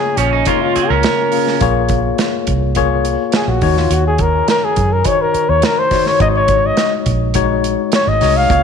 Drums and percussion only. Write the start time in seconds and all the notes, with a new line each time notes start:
0.17 closed hi-hat
0.45 kick, closed hi-hat
0.76 closed hi-hat
1.03 snare, closed hi-hat
1.32 open hi-hat
1.47 snare
1.61 kick, closed hi-hat
1.89 kick, closed hi-hat
2.18 snare, closed hi-hat
2.47 kick, closed hi-hat
2.75 kick, closed hi-hat
3.05 closed hi-hat
3.32 snare, closed hi-hat
3.61 kick, open hi-hat
3.77 snare
3.91 closed hi-hat
4.18 kick, closed hi-hat
4.48 snare, closed hi-hat
4.76 kick, closed hi-hat
5.04 kick, closed hi-hat
5.34 closed hi-hat
5.62 snare, closed hi-hat
5.91 kick, snare, open hi-hat
6.06 snare
6.20 kick, closed hi-hat
6.48 kick, closed hi-hat
6.77 snare, closed hi-hat
7.06 kick, closed hi-hat
7.34 kick, closed hi-hat
7.64 closed hi-hat
7.92 snare, closed hi-hat
8.21 snare, open hi-hat
8.50 kick, closed hi-hat